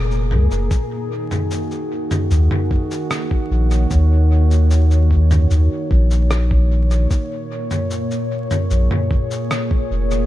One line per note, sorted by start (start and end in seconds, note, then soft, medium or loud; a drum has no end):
0.00 0.32 F1 medium
0.00 0.71 A#2 medium
0.00 0.71 A#3 medium
0.00 0.72 A#3 medium
0.00 3.27 G#4 medium
0.00 0.72 A#4 medium
0.00 0.70 C#5 medium
0.11 shaker soft
0.31 0.49 C#2 medium
0.31 mid tom medium
0.51 0.68 F1 medium
0.51 shaker soft
0.70 7.11 D#3 medium
0.70 kick loud
0.70 shaker medium
0.83 10.26 A#3 medium
1.07 7.11 F#4 medium
1.31 mid tom medium
1.31 shaker soft
1.51 shaker medium
1.71 shaker soft
2.11 mid tom medium
2.11 shaker soft
2.31 2.49 D#2 loud
2.31 shaker medium
2.51 mid tom medium
2.71 kick loud
2.91 shaker soft
3.11 cross-stick medium
3.11 shaker medium
3.31 10.26 C#5 medium
3.31 kick loud
3.51 3.86 A#1 medium
3.71 shaker soft
3.91 5.47 D#2 medium
3.91 kick loud
3.91 shaker medium
4.51 shaker soft
4.71 shaker medium
4.91 shaker soft
5.11 kick medium
5.31 mid tom medium
5.31 shaker soft
5.51 5.69 D#2 medium
5.51 shaker medium
5.91 7.07 A#1 medium
5.91 kick loud
6.11 shaker soft
6.31 cross-stick medium
6.31 shaker medium
6.51 kick loud
6.91 shaker soft
7.10 10.26 A#2 medium
7.10 kick loud
7.10 shaker medium
7.71 mid tom medium
7.71 shaker soft
7.91 shaker medium
8.11 shaker soft
8.39 10.26 G#4 medium
8.51 mid tom medium
8.51 shaker soft
8.71 8.89 A#1 loud
8.71 shaker medium
8.91 mid tom medium
9.11 kick loud
9.31 shaker soft
9.51 cross-stick medium
9.51 shaker medium
9.71 kick loud
9.91 10.26 F1 medium
10.11 shaker soft